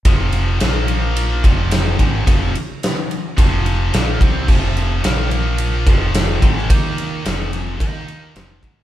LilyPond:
<<
  \new Staff \with { instrumentName = "Distorted electric guitar" } { \clef bass \time 4/4 \key f \minor \tempo 4 = 108 <f, c f>4 <bes, f bes>4. <f, c f>4 <aes, ees aes>8 | <f, c f>8 r4. <f, c f>4 <bes, f bes>8 <c g c'>8 | <f, c f>4 <bes, f bes>4. <f, c f>4 <aes, ees aes>8 | <ees bes ees'>4 <f, c f>4 <ees bes ees'>4 <f, c f>8 <aes, ees aes>8 | }
  \new Staff \with { instrumentName = "Fingered electric bass" } { \clef bass \time 4/4 \key f \minor f,,4 bes,,4. f,,4 aes,,8 | f,,8 r4. f,,4 bes,,8 c,8 | f,,4 bes,,4. f,,4 aes,,8 | ees,4 f,,4 ees,4 f,,8 aes,,8 | }
  \new DrumStaff \with { instrumentName = "Drums" } \drummode { \time 4/4 <bd cymr>8 cymr8 <cymr sn>8 cymr8 cymr8 <bd cymr>8 <cymr sn>8 <bd cymr>8 | <bd cymr>8 cymr8 <cymr sn>8 cymr8 <bd cymr>8 cymr8 <cymr sn>8 <bd cymr>8 | <cymc bd>8 cymr8 <cymr sn>8 cymr8 cymr8 <bd cymr>8 <cymr sn>8 <bd cymr>16 sn16 | <bd cymr>8 cymr8 <cymr sn>16 sn16 cymr8 <bd cymr>8 cymr8 <cymr sn>8 <bd cymr>16 sn16 | }
>>